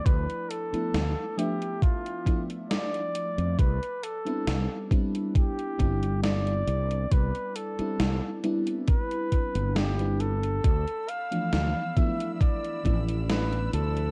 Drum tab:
HH |xxxxx-xxxxxxxxxx|xxxxx-xxxxxxxxxx|xxxxx-xxxxxxxxxx|xxxxx-xxxxxxxxxx|
SD |----o-------o---|----o-------o---|----o-------o---|----o-------o---|
BD |o-------o-o-----|o-----o-o-o-----|o-------o-o-----|o-----o-o-o-----|